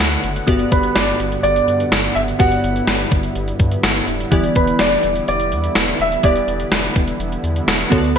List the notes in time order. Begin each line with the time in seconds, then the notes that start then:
Already playing: D3 A3 B3 F#4 A4 B4 C#5 D5 F#5
0.00 D2, closed hi-hat
0.12 closed hi-hat
0.24 F#1, closed hi-hat
0.36 closed hi-hat
0.47 G1 G2 G3 B3 F#4 G4 D5, kick, closed hi-hat
0.59 closed hi-hat
0.72 G1 B4, kick, closed hi-hat
0.83 closed hi-hat
0.95 G1 D5, snare, closed hi-hat
1.08 closed hi-hat
1.20 G1, closed hi-hat
1.32 closed hi-hat
1.43 G1 D5, closed hi-hat
1.56 closed hi-hat
1.68 G2, closed hi-hat
1.80 closed hi-hat
1.92 G1, snare, closed hi-hat
2.04 closed hi-hat
2.15 F#1 E5, closed hi-hat
2.28 closed hi-hat
2.39 G1 G2 B3 E4 F#4 G4 C#5 F#5, kick, closed hi-hat
2.47 D5
2.52 closed hi-hat
2.64 G1, closed hi-hat
2.76 closed hi-hat
2.87 G1, snare, closed hi-hat
3.00 closed hi-hat
3.11 G1, kick, closed hi-hat
3.23 closed hi-hat
3.36 G1, closed hi-hat
3.48 closed hi-hat
3.59 G2, kick, closed hi-hat
3.72 closed hi-hat
3.83 G1, snare, closed hi-hat
3.96 closed hi-hat
4.08 D#1, closed hi-hat
4.20 closed hi-hat
4.31 E1 D3 E3 B3 E4 G4 D5, kick, closed hi-hat
4.44 closed hi-hat
4.55 E1 B4, kick, closed hi-hat
4.67 closed hi-hat
4.79 E1 D5, snare, closed hi-hat
4.91 closed hi-hat
5.03 E1, closed hi-hat
5.16 closed hi-hat
5.28 E1 D5, closed hi-hat
5.40 closed hi-hat
5.52 E2, closed hi-hat
5.64 closed hi-hat
5.75 E1, snare, closed hi-hat
5.88 closed hi-hat
6.00 D#1 E5, closed hi-hat
6.12 closed hi-hat
6.23 E1 E3 B3 E4 G4 D5, kick, closed hi-hat
6.36 closed hi-hat
6.48 E1, closed hi-hat
6.60 closed hi-hat
6.71 E1, snare, closed hi-hat
6.84 closed hi-hat
6.96 E1, kick, closed hi-hat
7.08 closed hi-hat
7.20 E1, closed hi-hat
7.32 closed hi-hat
7.44 E2, closed hi-hat
7.56 closed hi-hat
7.67 E1, snare, closed hi-hat
7.80 closed hi-hat
7.90 D2 D3 A3 B3 F#4 A4 C#5, kick, closed hi-hat
7.98 D5
8.04 closed hi-hat